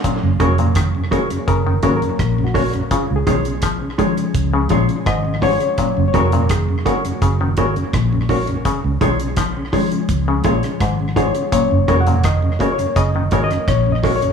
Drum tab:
HH |x-xxx-xxx-xxx-ox|x-xxx-xxx-xxx-ox|x-xxx-xxx-xxx-ox|x-xxx-oxx-xxx-xx|
SD |----r-------r---|----r-------r---|----r-------r---|----r------rr---|
BD |o-o-o-o-o-o-o-o-|o-o-o-o-o-o-o-o-|o-o-o-o-o-o-o-o-|o-o-o-o-o-o-o-o-|

HH |x-xxx-xxx-xxx-ox|
SD |----r------rr-r-|
BD |o-o-o-o-o-o-o-o-|